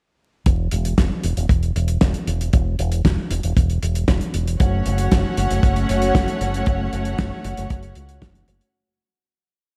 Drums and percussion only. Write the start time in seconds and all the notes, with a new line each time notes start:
0.46 kick, closed hi-hat
0.71 closed hi-hat
0.85 closed hi-hat
0.98 kick, snare, closed hi-hat
1.24 closed hi-hat
1.37 closed hi-hat
1.49 kick, closed hi-hat
1.63 closed hi-hat
1.76 closed hi-hat
1.88 closed hi-hat
2.01 kick, snare, closed hi-hat
2.14 closed hi-hat
2.27 closed hi-hat
2.41 closed hi-hat
2.53 kick, closed hi-hat
2.79 closed hi-hat
2.92 closed hi-hat
3.05 kick, snare, closed hi-hat
3.31 closed hi-hat
3.43 closed hi-hat
3.57 kick, closed hi-hat
3.70 closed hi-hat
3.83 closed hi-hat
3.95 closed hi-hat
4.08 kick, snare, closed hi-hat
4.21 closed hi-hat
4.34 closed hi-hat
4.48 closed hi-hat
4.60 kick, closed hi-hat
4.86 closed hi-hat
4.98 closed hi-hat
5.12 kick, snare, closed hi-hat
5.37 closed hi-hat
5.50 closed hi-hat
5.63 kick, closed hi-hat
5.76 closed hi-hat
5.89 closed hi-hat
6.02 closed hi-hat
6.15 kick, snare, closed hi-hat
6.28 closed hi-hat
6.41 closed hi-hat
6.54 closed hi-hat
6.66 kick, closed hi-hat
6.93 closed hi-hat
7.05 closed hi-hat
7.18 kick, snare, closed hi-hat
7.44 closed hi-hat
7.57 closed hi-hat
7.70 kick, closed hi-hat
7.83 closed hi-hat
7.95 closed hi-hat
8.09 closed hi-hat
8.22 kick, snare, closed hi-hat
8.35 closed hi-hat
8.48 closed hi-hat
8.61 closed hi-hat